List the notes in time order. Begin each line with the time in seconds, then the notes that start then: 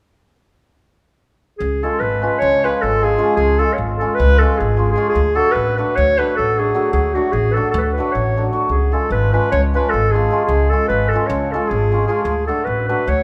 1.58 C#2 G#4
1.83 F3 G#3 C#4 F4 A4
1.99 G#1 B4
2.22 F3 G#3 C#4 F4 B4
2.39 C#2 C#5
2.64 F3 G#3 C#4 F4 B4
2.82 G#1 A4
3.01 F3 G#3 C#4 F4 G#4
3.18 F3 G#3 C#4 F4
3.36 C#2 G#4
3.59 F3 G#3 C#4 F4 A4
3.73 C#5
3.78 G#1
3.98 F3 G#3 C#4 A4
4.03 F4
4.14 B4
4.20 C#2
4.38 F3 G#3 C#4 A4
4.43 F4
4.58 G#1 G#4
4.77 F3 G#3 C#4 F4
4.91 G#4
4.96 F3 G#3 C#4 F4
5.09 G#4
5.15 D2
5.35 F#3 A3 D4 F#4 A4
5.51 B4
5.55 A1
5.77 F#3 A3 D4 F#4 B4
5.96 D2 C#5
6.18 F#3 A3 D4 F#4 B4
6.36 A1 A4
6.58 F#3 A3 D4 F#4 G#4
6.74 F#3 A3 D4 F#4
6.92 D2 G#4
7.14 F#3 A3 D4 F#4
7.32 A1 G#4
7.51 A4 B4
7.57 F#3 A3 D4 F#4
7.71 D2 A4
7.77 A4 B4
7.92 B4
7.98 F#3 A3 D4 F#4
8.12 A1 C#5
8.37 F#3 A3 D4 F#4
8.53 F#3 A3 D4 F#4
8.68 C#2 G#4
8.92 F3 G#3 C#4 F4 A4
9.11 G#1 B4
9.33 F3 G#3 C#4 F4 B4
9.51 C#2 C#5
9.74 F3 G#3 C#4 F4 B4
9.89 A4
9.94 G#1
10.11 F3 G#3 G#4
10.15 C#4 F4
10.31 F3 G#3 C#4 F4
10.45 C#2 G#4
10.70 F3 G#3 C#4 F4 A4
10.88 G#1 B4
11.08 A4
11.13 F3 G#3 C#4 F4
11.27 C#2 C#5
11.51 F3 G#3 C#4 A4
11.56 F4
11.68 G#1 G#4
11.92 F3 G#3 C#4 F4
12.07 F3 G#3 C#4 F4 G#4
12.23 D2 G#4
12.47 F#3 A3 D4 F#4 A4
12.64 A1 B4
12.88 F#3 A3 D4 F#4 B4
13.07 D2 C#5